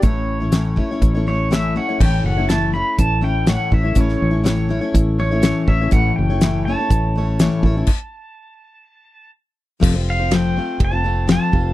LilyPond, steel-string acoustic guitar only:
\new Staff \with { instrumentName = "Steel-string acoustic guitar" } { \time 4/4 \key a \mixolydian \tempo 4 = 123 <a, e a cis' e' cis''>8. <a cis' e' cis''>16 <a, e a cis' e' cis''>8 <a cis' e' cis''>16 <a cis' e' cis''>8 <a cis' e' cis''>16 <a cis' e' cis''>8 <a, e a cis' e' cis''>8 <a cis' e' cis''>16 <a cis' e' cis''>16 | <a, e a cis' e' cis''>8. <a cis' e' cis''>16 <a, e a cis' e' cis''>8 <a cis' e' cis''>4 <a cis' e' cis''>8 <a, e a cis' e' cis''>8 <a cis' e' cis''>16 <a cis' e' cis''>16 | <a, e a cis' e' cis''>8. <a cis' e' cis''>16 <a, e a cis' e' cis''>8 <a cis' e' cis''>16 <a cis' e' cis''>8. <a cis' e' cis''>16 <a cis' e' cis''>16 <a, e a cis' e' cis''>8 <a cis' e' cis''>16 <a cis' e' cis''>16 | <a, e a cis' e' cis''>8. <a cis' e' cis''>16 <a, e a cis' e' cis''>8 <a cis' e' cis''>16 <a cis' e' cis''>8. <a cis' e' cis''>8 <a, e a cis' e' cis''>8 <a cis' e' cis''>16 <a cis' e' cis''>16 |
r1 | <f a c' f' c''>16 <c' f' c''>8 <c' f' c''>16 <f a c' f' c''>8 <a c' f' c''>8. <c' f' c''>16 <a c' f' c''>8 <f a c' f' c''>8 <a c' f' c''>8 | }